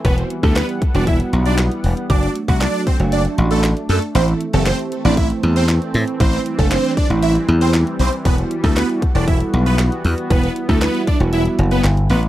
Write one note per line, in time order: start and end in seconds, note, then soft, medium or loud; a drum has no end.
0.00 2.06 E3 medium
0.04 0.22 E1 loud
0.04 0.34 G3 medium
0.04 2.08 G3 medium
0.04 0.34 B3 medium
0.04 2.08 B3 medium
0.04 0.15 B3 medium
0.04 0.34 E4 medium
0.04 0.34 F#4 medium
0.04 0.15 B4 loud
0.04 2.08 F#5 medium
0.04 kick loud
0.04 closed hi-hat loud
0.18 closed hi-hat medium
0.30 closed hi-hat medium
0.43 0.61 D2 loud
0.43 0.82 G3 medium
0.43 0.54 A3 medium
0.43 0.82 B3 medium
0.43 0.82 E4 medium
0.43 0.82 G4 medium
0.43 0.53 A4 medium
0.43 kick loud
0.43 closed hi-hat medium
0.56 0.66 B3 medium
0.56 0.66 B4 medium
0.56 snare medium
0.56 clap loud
0.56 closed hi-hat medium
0.69 closed hi-hat medium
0.82 kick loud
0.82 closed hi-hat medium
0.94 1.21 E1 medium
0.94 1.73 G3 medium
0.94 1.73 B3 medium
0.94 1.05 D4 medium
0.94 1.73 E4 medium
0.94 1.73 F#4 medium
0.94 1.04 D5 medium
0.94 closed hi-hat medium
1.07 1.18 E4 medium
1.07 1.17 E5 medium
1.07 kick loud
1.07 closed hi-hat loud
1.20 closed hi-hat medium
1.33 1.68 B1 medium
1.33 closed hi-hat medium
1.46 1.56 D4 medium
1.46 1.56 D5 medium
1.46 closed hi-hat medium
1.58 snare medium
1.58 clap loud
1.58 closed hi-hat loud
1.72 closed hi-hat medium
1.84 1.93 E1 loud
1.84 open hi-hat medium
1.97 closed hi-hat soft
2.10 2.27 F#1 loud
2.10 2.39 F#3 medium
2.10 2.39 A3 medium
2.10 4.13 A3 medium
2.10 4.13 D4 medium
2.10 2.39 D4 medium
2.10 2.30 D4 medium
2.10 2.39 F#4 medium
2.10 2.29 D5 loud
2.10 kick loud
2.10 closed hi-hat loud
2.23 closed hi-hat medium
2.36 closed hi-hat medium
2.48 2.66 C2 loud
2.48 2.87 F#3 medium
2.48 2.87 A3 medium
2.48 2.87 D4 medium
2.48 2.88 F#4 medium
2.48 2.59 F#4 medium
2.48 2.58 F#5 medium
2.48 kick loud
2.48 closed hi-hat medium
2.61 2.81 D4 medium
2.61 2.81 D5 medium
2.61 snare medium
2.61 clap loud
2.61 closed hi-hat medium
2.74 closed hi-hat medium
2.87 2.97 C4 medium
2.87 2.97 C5 medium
2.87 kick loud
2.87 closed hi-hat medium
2.99 3.26 F#1 medium
2.99 3.78 F#3 medium
2.99 3.78 A3 medium
2.99 3.78 D4 medium
2.99 3.78 F#4 medium
2.99 closed hi-hat medium
3.12 3.23 D4 medium
3.12 3.22 D5 medium
3.12 closed hi-hat loud
3.25 closed hi-hat medium
3.38 3.73 A1 medium
3.38 closed hi-hat medium
3.51 3.61 A3 medium
3.51 3.61 A4 medium
3.51 closed hi-hat medium
3.63 snare medium
3.63 clap loud
3.63 closed hi-hat loud
3.77 closed hi-hat medium
3.89 3.98 F#2 loud
3.89 4.00 A3 medium
3.89 3.99 A4 medium
3.89 open hi-hat medium
4.02 closed hi-hat medium
4.15 4.32 A1 loud
4.15 4.44 E3 medium
4.15 12.29 E3 medium
4.15 4.44 A3 medium
4.15 6.18 A3 medium
4.15 8.21 C4 medium
4.15 4.44 C4 medium
4.15 4.25 C4 medium
4.15 4.44 E4 medium
4.15 4.25 C5 loud
4.15 closed hi-hat loud
4.28 closed hi-hat medium
4.41 closed hi-hat medium
4.53 4.71 F#1 loud
4.53 4.92 E3 medium
4.53 4.92 A3 medium
4.53 4.64 A3 medium
4.53 4.93 C4 medium
4.53 4.93 G4 medium
4.53 4.63 A4 medium
4.53 closed hi-hat medium
4.66 4.77 C4 medium
4.66 4.76 C5 medium
4.66 snare medium
4.66 clap loud
4.66 closed hi-hat medium
4.79 closed hi-hat medium
4.92 closed hi-hat medium
5.05 5.31 A1 medium
5.05 5.83 E3 medium
5.05 5.83 A3 medium
5.05 5.83 C4 medium
5.05 5.15 D4 medium
5.05 5.83 E4 medium
5.05 5.15 D5 medium
5.05 closed hi-hat soft
5.17 5.28 E4 medium
5.17 5.27 E5 medium
5.17 kick loud
5.17 closed hi-hat loud
5.30 closed hi-hat medium
5.43 5.78 E2 medium
5.43 closed hi-hat medium
5.56 5.66 C4 medium
5.56 5.66 C5 medium
5.56 closed hi-hat medium
5.69 snare medium
5.69 clap loud
5.69 closed hi-hat loud
5.82 closed hi-hat soft
5.94 6.03 A2 loud
5.94 open hi-hat medium
6.08 closed hi-hat soft
6.20 6.38 A1 loud
6.20 6.49 E3 medium
6.20 12.29 G3 medium
6.20 6.49 A3 medium
6.20 6.50 C4 medium
6.20 6.40 C4 medium
6.20 6.50 E4 medium
6.20 6.40 C5 loud
6.20 kick loud
6.20 closed hi-hat loud
6.33 closed hi-hat medium
6.46 closed hi-hat medium
6.58 6.76 F#1 loud
6.58 6.98 E3 medium
6.58 6.98 A3 medium
6.58 6.69 A3 medium
6.58 6.98 C4 medium
6.58 6.98 D4 medium
6.58 6.68 A4 medium
6.58 kick loud
6.58 closed hi-hat medium
6.71 6.91 C4 medium
6.71 6.91 C5 medium
6.71 snare medium
6.71 clap loud
6.71 closed hi-hat medium
6.84 closed hi-hat medium
6.97 7.07 D4 medium
6.97 7.07 D5 medium
6.97 kick loud
6.97 closed hi-hat medium
7.10 7.36 A1 medium
7.10 7.88 E3 medium
7.10 7.88 A3 medium
7.10 7.88 C4 medium
7.10 7.88 E4 medium
7.10 closed hi-hat medium
7.23 7.33 E4 medium
7.23 7.32 E5 medium
7.23 closed hi-hat loud
7.35 closed hi-hat medium
7.48 7.83 E2 medium
7.48 closed hi-hat medium
7.61 7.71 C4 medium
7.61 7.71 C5 medium
7.61 closed hi-hat medium
7.74 snare medium
7.74 clap loud
7.74 closed hi-hat loud
7.87 closed hi-hat medium
7.99 8.08 B1 loud
7.99 8.10 C4 medium
7.99 8.09 C5 medium
7.99 open hi-hat medium
8.13 closed hi-hat medium
8.25 8.43 E1 loud
8.25 8.54 G3 medium
8.25 8.55 B3 medium
8.25 12.29 B3 medium
8.25 8.35 B3 medium
8.25 8.55 E4 medium
8.25 10.28 F#4 medium
8.25 8.55 F#4 medium
8.25 8.35 B4 loud
8.25 kick loud
8.25 closed hi-hat loud
8.38 closed hi-hat medium
8.51 closed hi-hat medium
8.64 8.81 D2 loud
8.64 9.03 G3 medium
8.64 8.74 A3 medium
8.64 9.03 B3 medium
8.64 9.03 E4 medium
8.64 9.03 F#4 medium
8.64 8.73 A4 medium
8.64 kick loud
8.64 closed hi-hat medium
8.76 8.87 B3 medium
8.76 8.86 B4 medium
8.76 snare medium
8.76 clap loud
8.76 closed hi-hat medium
8.90 closed hi-hat medium
9.02 kick loud
9.02 closed hi-hat medium
9.15 9.41 E1 medium
9.15 9.93 G3 medium
9.15 9.93 B3 medium
9.15 9.25 D4 medium
9.15 9.93 E4 medium
9.15 9.93 A4 medium
9.15 9.25 D5 medium
9.15 closed hi-hat medium
9.28 9.38 E4 medium
9.28 9.37 E5 medium
9.28 kick loud
9.28 closed hi-hat loud
9.40 closed hi-hat medium
9.53 9.88 B1 medium
9.53 closed hi-hat medium
9.66 9.77 B3 medium
9.66 9.76 B4 medium
9.66 closed hi-hat medium
9.79 snare medium
9.79 clap loud
9.79 closed hi-hat loud
9.92 closed hi-hat medium
10.05 10.13 E2 loud
10.05 open hi-hat medium
10.18 closed hi-hat soft
10.30 10.48 E1 loud
10.30 10.60 G3 medium
10.30 10.60 B3 medium
10.30 10.50 B3 medium
10.30 12.29 E4 medium
10.30 10.60 E4 medium
10.30 10.60 F#4 medium
10.30 10.50 B4 loud
10.30 kick loud
10.30 closed hi-hat loud
10.44 closed hi-hat medium
10.56 closed hi-hat medium
10.69 10.86 D2 loud
10.69 11.08 G3 medium
10.69 10.79 A3 medium
10.69 11.08 B3 medium
10.69 11.08 E4 medium
10.69 11.08 F#4 medium
10.69 10.79 A4 medium
10.69 kick loud
10.69 closed hi-hat medium
10.82 11.02 B3 medium
10.82 11.01 B4 medium
10.82 snare medium
10.82 clap loud
10.82 closed hi-hat medium
10.95 closed hi-hat medium
11.07 11.18 D4 medium
11.07 11.17 D5 medium
11.07 kick loud
11.07 closed hi-hat medium
11.20 11.46 E1 medium
11.20 11.98 G3 medium
11.20 11.98 B3 medium
11.20 11.98 E4 medium
11.20 11.98 F#4 medium
11.20 closed hi-hat medium
11.33 11.43 E4 medium
11.33 11.43 E5 medium
11.33 closed hi-hat loud
11.46 closed hi-hat medium
11.59 11.82 F#1 medium
11.59 closed hi-hat medium
11.71 11.82 B3 medium
11.71 11.81 B4 medium
11.71 closed hi-hat medium
11.84 12.07 G1 medium
11.84 snare medium
11.84 clap loud
11.84 closed hi-hat loud
11.97 closed hi-hat soft
12.10 12.29 A1 medium
12.10 12.20 B3 medium
12.10 12.20 B4 medium
12.10 open hi-hat medium
12.23 closed hi-hat soft